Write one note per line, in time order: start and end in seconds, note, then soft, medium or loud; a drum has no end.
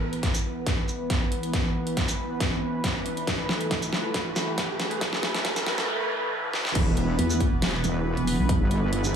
0.00 6.71 E3 medium
0.00 3.24 B3 medium
0.00 6.71 B4 medium
0.00 riser medium
0.13 closed hi-hat medium
0.23 kick medium
0.23 snare soft
0.23 closed hi-hat medium
0.35 closed hi-hat medium
0.35 shaker medium
0.67 kick medium
0.67 snare medium
0.67 closed hi-hat medium
0.88 shaker medium
1.10 kick medium
1.10 snare medium
1.10 closed hi-hat medium
1.32 closed hi-hat medium
1.43 closed hi-hat medium
1.53 kick medium
1.53 snare medium
1.53 closed hi-hat medium
1.87 closed hi-hat medium
1.97 kick medium
1.97 snare medium
1.97 closed hi-hat medium
2.08 closed hi-hat medium
2.08 shaker medium
2.40 kick loud
2.40 snare medium
2.40 closed hi-hat medium
2.84 kick loud
2.84 snare medium
2.84 closed hi-hat medium
3.06 closed hi-hat medium
3.17 closed hi-hat medium
3.27 6.72 A3 medium
3.27 kick medium
3.27 snare medium
3.27 closed hi-hat medium
3.49 snare medium
3.61 closed hi-hat medium
3.71 kick loud
3.71 snare medium
3.71 closed hi-hat medium
3.82 closed hi-hat medium
3.82 shaker medium
3.93 snare medium
4.14 kick loud
4.14 snare medium
4.14 closed hi-hat medium
4.36 snare medium
4.36 shaker medium
4.58 kick loud
4.58 snare medium
4.58 closed hi-hat medium
4.80 snare medium
4.80 closed hi-hat medium
4.91 closed hi-hat medium
5.01 kick loud
5.01 snare medium
5.01 closed hi-hat medium
5.01 noise sweep medium
5.13 snare medium
5.23 snare medium
5.35 snare medium
5.35 closed hi-hat medium
5.45 kick loud
5.45 snare loud
5.45 closed hi-hat medium
5.56 snare medium
5.56 closed hi-hat medium
5.56 shaker medium
5.66 snare loud
5.78 snare medium
6.53 snare medium
6.65 snare medium
6.75 7.17 E1 loud
6.75 9.16 E3 medium
6.75 9.16 B3 medium
6.75 9.16 B4 medium
6.75 kick loud
6.75 closed hi-hat medium
6.75 crash loud
6.97 closed hi-hat medium
7.19 7.50 E2 medium
7.19 closed hi-hat medium
7.30 shaker medium
7.40 kick medium
7.40 closed hi-hat medium
7.52 7.82 E1 medium
7.62 snare loud
7.62 closed hi-hat medium
7.84 8.15 E1 loud
7.84 closed hi-hat medium
7.84 shaker medium
8.17 8.37 E1 medium
8.17 closed hi-hat soft
8.27 open hi-hat loud
8.39 8.59 B1 loud
8.49 kick loud
8.49 closed hi-hat medium
8.61 9.16 G1 loud
8.71 closed hi-hat medium
8.93 closed hi-hat medium
9.04 shaker medium